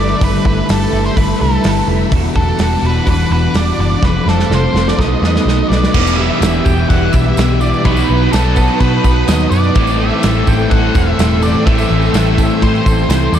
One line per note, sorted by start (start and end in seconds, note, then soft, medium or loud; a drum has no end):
0.00 0.13 G1 medium
0.00 0.19 G2 medium
0.00 0.21 D3 medium
0.00 0.22 G3 medium
0.00 0.21 A3 medium
0.00 0.22 E4 medium
0.00 0.23 G4 medium
0.00 2.08 A4 medium
0.00 0.23 B4 medium
0.00 0.24 D5 loud
0.00 2.08 E5 medium
0.00 2.08 B5 medium
0.20 0.37 G1 medium
0.20 0.67 G2 medium
0.20 0.68 D3 medium
0.20 0.72 G3 medium
0.20 0.70 G3 loud
0.20 0.68 A3 medium
0.20 0.48 E4 medium
0.20 0.46 G4 medium
0.20 0.45 B4 medium
0.20 0.45 B4 loud
0.20 kick loud
0.20 open hi-hat medium
0.45 0.61 G1 medium
0.45 0.69 E4 medium
0.45 0.70 G4 medium
0.45 0.71 B4 medium
0.45 0.70 B4 loud
0.45 kick loud
0.68 0.85 G1 medium
0.68 1.15 G2 medium
0.68 1.16 D3 medium
0.68 1.17 G3 medium
0.68 1.16 A3 medium
0.68 0.95 E4 medium
0.68 0.94 G4 medium
0.68 1.05 A4 medium
0.68 0.93 B4 medium
0.68 snare loud
0.68 open hi-hat medium
0.93 1.09 G1 loud
0.93 1.17 E4 medium
0.93 1.17 G4 medium
0.93 1.18 B4 medium
1.06 1.16 C5 loud
1.16 1.32 G1 loud
1.16 1.63 G2 medium
1.16 1.42 D3 loud
1.16 1.64 G3 medium
1.16 1.40 G3 medium
1.16 1.63 A3 medium
1.16 1.41 E4 medium
1.16 1.41 G4 medium
1.16 1.41 B4 medium
1.16 1.39 B4 loud
1.16 kick medium
1.16 open hi-hat medium
1.41 1.57 C2 medium
1.41 1.63 D3 medium
1.41 1.65 G3 medium
1.41 1.65 E4 medium
1.41 1.66 G4 medium
1.41 1.85 A4 medium
1.41 1.66 B4 medium
1.64 1.80 G1 loud
1.64 2.11 G2 medium
1.64 2.11 D3 medium
1.64 2.12 G3 medium
1.64 2.11 A3 medium
1.64 1.90 E4 medium
1.64 1.89 G4 medium
1.64 1.88 B4 medium
1.64 snare loud
1.64 open hi-hat medium
1.88 2.04 F1 medium
1.88 2.12 E4 medium
1.88 2.12 G4 medium
1.88 2.11 B4 medium
2.11 2.27 E1 loud
2.11 2.58 E2 loud
2.11 2.59 B2 loud
2.11 2.59 E3 medium
2.11 2.61 E3 loud
2.11 2.38 G3 loud
2.11 2.37 D4 medium
2.11 2.36 F#4 loud
2.11 4.01 F#5 medium
2.11 4.96 D6 medium
2.11 kick loud
2.11 open hi-hat medium
2.35 2.51 E1 medium
2.35 2.60 G3 medium
2.35 2.60 D4 medium
2.35 2.61 F#4 medium
2.35 2.85 A4 medium
2.35 kick medium
2.59 2.75 E1 medium
2.59 3.05 E2 medium
2.59 3.06 B2 medium
2.59 3.05 E3 medium
2.59 3.07 E3 medium
2.59 2.84 G3 medium
2.59 2.83 D4 medium
2.59 2.82 F#4 medium
2.59 snare loud
2.59 open hi-hat medium
2.83 2.99 E1 medium
2.83 3.06 G3 medium
2.83 3.07 D4 medium
2.83 3.08 F#4 medium
2.83 3.08 B4 medium
3.06 3.23 E1 medium
3.06 3.53 E2 medium
3.06 3.32 B2 medium
3.06 3.53 E3 medium
3.06 3.30 E3 loud
3.06 3.32 G3 loud
3.06 3.30 D4 loud
3.06 3.29 F#4 medium
3.06 3.31 B4 medium
3.06 kick medium
3.06 open hi-hat soft
3.31 3.47 E1 medium
3.31 3.54 B2 medium
3.31 3.55 E3 medium
3.31 3.54 G3 medium
3.31 3.55 D4 medium
3.31 3.56 F#4 medium
3.31 3.57 B4 medium
3.54 3.71 E1 medium
3.54 4.01 E2 medium
3.54 4.02 B2 medium
3.54 4.02 E3 medium
3.54 3.80 G3 medium
3.54 3.78 D4 medium
3.54 3.78 F#4 medium
3.54 3.80 D5 medium
3.54 snare loud
3.54 open hi-hat soft
3.79 3.95 F#1 medium
3.79 4.03 G3 medium
3.79 4.02 D4 medium
3.79 4.02 F#4 medium
3.79 4.05 D5 medium
4.02 4.18 F1 medium
4.02 4.50 F2 medium
4.02 4.51 C3 medium
4.02 4.51 F3 medium
4.02 4.52 F3 medium
4.02 4.50 A3 medium
4.02 4.28 D4 loud
4.02 5.92 A4 medium
4.02 4.27 A4 medium
4.02 4.29 B4 loud
4.02 4.26 C5 medium
4.02 4.97 F5 medium
4.02 kick loud
4.02 snare medium
4.26 4.42 F1 medium
4.26 4.51 D4 medium
4.26 4.52 A4 medium
4.26 4.53 A4 medium
4.26 4.52 C5 medium
4.26 snare medium
4.39 snare medium
4.50 4.66 F1 medium
4.50 4.98 F2 medium
4.50 4.98 C3 medium
4.50 4.99 F3 medium
4.50 4.98 A3 medium
4.50 4.76 D4 medium
4.50 4.75 A4 medium
4.50 4.73 C5 medium
4.50 snare medium
4.55 4.90 C5 medium
4.74 4.90 F1 medium
4.74 4.99 D4 medium
4.74 4.98 A4 medium
4.74 4.97 C5 medium
4.74 snare medium
4.88 5.00 D5 loud
4.88 snare medium
4.98 5.14 B1 medium
4.98 5.45 B2 medium
4.98 5.47 B2 medium
4.98 5.22 F#3 medium
4.98 5.47 F#3 medium
4.98 5.25 A3 loud
4.98 5.20 B3 medium
4.98 5.24 D#4 medium
4.98 5.23 F#4 loud
4.98 5.22 B4 medium
4.98 5.93 D#5 medium
4.98 5.23 D#5 loud
4.98 5.93 B5 medium
4.98 kick medium
4.98 snare medium
5.21 5.38 E2 medium
5.21 5.46 F#3 medium
5.21 5.47 B3 medium
5.21 5.47 D#4 medium
5.21 5.47 F#4 medium
5.21 5.48 B4 medium
5.21 5.68 D#5 loud
5.21 snare medium
5.26 5.46 A3 medium
5.36 snare medium
5.45 5.62 B1 loud
5.45 5.93 B2 medium
5.45 5.93 F#3 medium
5.45 5.72 A3 medium
5.45 5.94 B3 medium
5.45 5.71 D#4 medium
5.45 5.70 F#4 medium
5.45 5.69 B4 medium
5.45 snare medium
5.69 5.86 B1 medium
5.69 5.94 D#4 medium
5.69 5.94 F#4 medium
5.69 5.93 B4 medium
5.69 6.16 D5 loud
5.69 snare medium
5.73 5.94 A3 medium
5.84 snare medium
5.94 6.29 E1 loud
5.94 6.41 E2 medium
5.94 6.19 B2 loud
5.94 6.42 E3 medium
5.94 6.17 E3 medium
5.94 6.41 G3 medium
5.94 6.19 D4 loud
5.94 6.18 E4 loud
5.94 7.84 G4 medium
5.94 6.18 B4 loud
5.94 7.84 E5 medium
5.94 7.83 D6 medium
5.94 kick loud
5.94 crash loud
5.94 tambourine soft
5.94 crash medium
6.07 tambourine medium
6.16 6.42 B2 soft
6.16 6.43 E3 medium
6.16 6.43 E4 medium
6.16 6.44 B4 medium
6.16 6.67 E5 loud
6.21 6.42 D4 medium
6.41 6.59 E1 medium
6.41 7.36 E2 medium
6.41 7.14 B2 medium
6.41 7.12 E3 medium
6.41 6.67 G3 medium
6.41 6.66 D4 medium
6.41 6.66 E4 medium
6.41 6.66 B4 medium
6.41 snare loud
6.41 tambourine medium
6.41 crash medium
6.54 tambourine soft
6.65 6.83 E1 medium
6.65 7.15 E3 medium
6.65 6.88 G3 medium
6.65 6.89 D4 medium
6.65 6.90 E4 medium
6.65 6.91 B4 loud
6.65 6.89 G5 loud
6.65 kick medium
6.65 tambourine medium
6.78 tambourine soft
6.89 7.07 E1 loud
6.89 7.37 G3 medium
6.89 7.15 D4 medium
6.89 7.14 E4 medium
6.89 7.12 B4 medium
6.89 7.14 F#5 loud
6.89 kick medium
6.89 crash medium
7.12 7.31 B1 medium
7.12 7.37 B2 medium
7.12 7.38 E3 medium
7.12 7.38 D4 medium
7.12 7.39 E4 medium
7.12 7.39 B4 medium
7.12 7.61 E5 loud
7.12 kick medium
7.12 tambourine medium
7.37 7.72 B1 loud
7.37 7.84 E2 medium
7.37 7.62 B2 medium
7.37 7.84 E3 loud
7.37 7.60 E3 medium
7.37 7.84 G3 loud
7.37 7.63 D4 loud
7.37 7.62 E4 loud
7.37 7.61 B4 loud
7.37 snare loud
7.37 tambourine medium
7.37 crash medium
7.49 tambourine soft
7.61 7.84 B2 medium
7.61 7.84 E3 medium
7.61 7.85 D4 medium
7.61 7.85 E4 medium
7.61 7.84 B4 medium
7.61 7.86 D5 loud
7.61 tambourine medium
7.74 tambourine soft
7.85 8.02 B1 loud
7.85 8.33 B2 medium
7.85 8.31 B2 loud
7.85 8.33 D#3 loud
7.85 8.11 F#3 medium
7.85 8.10 F#3 loud
7.85 8.11 B3 loud
7.85 8.08 B3 loud
7.85 8.10 D#4 loud
7.85 8.32 B4 loud
7.85 9.74 B4 medium
7.85 8.09 B4 loud
7.85 9.74 F#5 medium
7.85 9.74 D#6 medium
7.85 kick loud
7.85 tambourine soft
7.85 crash medium
7.97 tambourine medium
8.09 8.26 B1 medium
8.09 8.33 F#3 soft
8.09 8.32 F#3 medium
8.09 8.34 B3 medium
8.09 8.33 B3 medium
8.09 8.34 D#4 medium
8.09 8.34 B4 medium
8.32 8.68 B1 medium
8.32 9.26 B2 loud
8.32 8.58 F#3 medium
8.32 9.05 F#3 medium
8.32 8.57 B3 medium
8.32 9.03 B3 loud
8.32 8.56 D#4 medium
8.32 8.80 A4 medium
8.32 8.56 B4 medium
8.32 snare loud
8.32 tambourine medium
8.32 crash medium
8.44 tambourine soft
8.56 9.06 B2 medium
8.56 9.06 D#3 medium
8.56 8.80 F#3 loud
8.56 8.81 B3 medium
8.56 8.81 D#4 loud
8.56 8.82 B4 loud
8.56 kick medium
8.56 tambourine medium
8.68 tambourine soft
8.80 8.98 B2 loud
8.80 9.06 F#3 medium
8.80 9.05 B3 medium
8.80 9.05 D#4 medium
8.80 9.30 B4 loud
8.80 9.04 B4 medium
8.80 kick medium
8.80 crash medium
9.04 9.22 B1 medium
9.04 9.27 F#3 medium
9.04 9.28 F#3 medium
9.04 9.28 B3 medium
9.04 9.29 B3 medium
9.04 9.29 D#4 medium
9.04 9.30 B4 medium
9.04 kick medium
9.04 tambourine medium
9.28 9.46 D#2 medium
9.28 9.74 B2 medium
9.28 9.75 B2 loud
9.28 9.75 D#3 medium
9.28 9.53 F#3 medium
9.28 9.53 F#3 loud
9.28 9.51 B3 medium
9.28 9.53 B3 loud
9.28 9.52 D#4 loud
9.28 9.51 B4 loud
9.28 9.50 D#5 loud
9.28 snare loud
9.28 tambourine medium
9.28 crash medium
9.40 tambourine soft
9.50 9.69 F#2 medium
9.50 9.75 F#3 medium
9.50 9.76 F#3 medium
9.50 9.75 B3 medium
9.50 9.75 D#4 medium
9.50 9.75 B4 medium
9.50 9.98 D5 loud
9.50 tambourine medium
9.64 tambourine soft
9.75 10.10 A1 loud
9.75 10.23 A2 loud
9.75 10.27 A2 medium
9.75 10.02 E3 loud
9.75 10.49 E3 medium
9.75 10.03 G3 medium
9.75 9.99 A3 loud
9.75 10.02 C4 medium
9.75 10.01 E4 loud
9.75 13.39 A4 medium
9.75 10.00 A4 medium
9.75 13.39 G5 medium
9.75 13.39 C6 medium
9.75 kick loud
9.75 tambourine soft
9.75 crash medium
9.87 tambourine medium
9.99 10.24 E3 medium
9.99 10.25 A3 medium
9.99 10.24 C4 medium
9.99 10.25 E4 medium
9.99 10.26 A4 medium
9.99 10.49 E5 loud
10.03 10.23 G3 medium
10.23 10.41 A1 medium
10.23 11.18 A2 loud
10.23 10.97 E3 medium
10.23 10.49 G3 medium
10.23 10.94 A3 loud
10.23 10.49 C4 medium
10.23 10.48 E4 medium
10.23 10.48 A4 medium
10.23 snare loud
10.23 tambourine medium
10.23 crash medium
10.35 tambourine soft
10.47 10.65 A1 medium
10.47 10.97 A2 medium
10.47 11.19 E3 medium
10.47 10.72 G3 medium
10.47 10.72 C4 medium
10.47 10.73 E4 medium
10.47 10.73 A4 loud
10.47 10.70 G5 loud
10.47 kick medium
10.47 tambourine medium
10.59 tambourine soft
10.70 10.88 A1 loud
10.70 10.97 G3 medium
10.70 10.96 C4 medium
10.70 10.96 E4 medium
10.70 10.96 F#5 loud
10.70 kick medium
10.70 crash medium
10.74 10.95 A4 medium
10.95 11.13 E1 medium
10.95 11.20 E3 medium
10.95 11.20 G3 medium
10.95 11.20 A3 medium
10.95 11.20 C4 medium
10.95 11.21 E4 medium
10.95 11.21 A4 medium
10.95 11.43 E5 loud
10.95 kick loud
10.95 tambourine medium
11.19 11.54 E1 loud
11.19 11.65 A2 loud
11.19 11.66 A2 medium
11.19 11.67 E3 loud
11.19 11.44 E3 medium
11.19 11.45 G3 loud
11.19 11.41 A3 medium
11.19 11.44 C4 loud
11.19 11.44 E4 loud
11.19 11.42 A4 loud
11.19 snare loud
11.19 tambourine medium
11.19 crash medium
11.31 tambourine soft
11.42 11.67 E3 medium
11.42 11.67 G3 medium
11.42 11.68 A3 medium
11.42 11.67 C4 medium
11.42 11.68 E4 medium
11.42 11.68 A4 medium
11.42 11.66 D5 loud
11.42 tambourine medium
11.66 11.84 A1 loud
11.66 12.14 A2 medium
11.66 12.12 A2 medium
11.66 12.40 E3 loud
11.66 11.93 E3 loud
11.66 11.93 G3 medium
11.66 11.89 A3 loud
11.66 11.92 C4 medium
11.66 11.91 E4 medium
11.66 11.90 A4 loud
11.66 12.12 E5 loud
11.66 kick loud
11.66 tambourine soft
11.66 crash medium
11.78 tambourine medium
11.90 12.08 A1 medium
11.90 12.14 E3 medium
11.90 12.14 G3 medium
11.90 12.14 A3 medium
11.90 12.15 C4 medium
11.90 12.16 E4 medium
11.90 12.16 A4 medium
11.90 tambourine soft
12.02 tambourine soft
12.13 12.49 A1 medium
12.13 13.08 A2 loud
12.13 12.85 E3 loud
12.13 12.40 G3 medium
12.13 12.83 A3 medium
12.13 12.39 C4 medium
12.13 12.39 E4 medium
12.13 12.63 E5 medium
12.13 snare loud
12.13 tambourine medium
12.13 crash medium
12.17 12.38 A4 medium
12.38 12.88 A2 medium
12.38 12.87 E3 medium
12.38 12.61 G3 medium
12.38 12.62 C4 medium
12.38 12.62 E4 medium
12.38 12.63 A4 medium
12.38 kick medium
12.38 tambourine medium
12.51 tambourine soft
12.62 12.79 A2 loud
12.62 12.87 G3 medium
12.62 12.87 C4 medium
12.62 12.86 E4 medium
12.62 12.85 A4 medium
12.62 13.09 C5 loud
12.62 kick medium
12.62 tambourine soft
12.62 crash medium
12.75 tambourine soft
12.84 13.04 A1 medium
12.84 13.09 E3 medium
12.84 13.11 A3 medium
12.84 13.10 C4 medium
12.84 13.11 E4 medium
12.84 13.11 A4 medium
12.84 kick medium
12.84 tambourine medium
12.88 13.09 G3 medium
12.99 tambourine soft
13.09 13.27 C2 loud
13.09 13.39 A2 medium
13.09 13.39 E3 medium
13.09 13.34 E3 medium
13.09 13.35 G3 loud
13.09 13.31 A3 medium
13.09 13.34 C4 loud
13.09 13.33 E4 loud
13.09 13.32 A4 loud
13.09 13.35 C5 medium
13.09 snare loud
13.09 tambourine loud
13.09 crash medium
13.23 tambourine soft
13.32 13.39 E2 loud
13.32 13.39 E3 medium
13.32 13.39 A3 medium
13.32 13.39 C4 medium
13.32 13.39 E4 medium
13.32 13.39 A4 medium
13.32 13.39 D5 loud
13.32 tambourine medium
13.36 13.39 G3 medium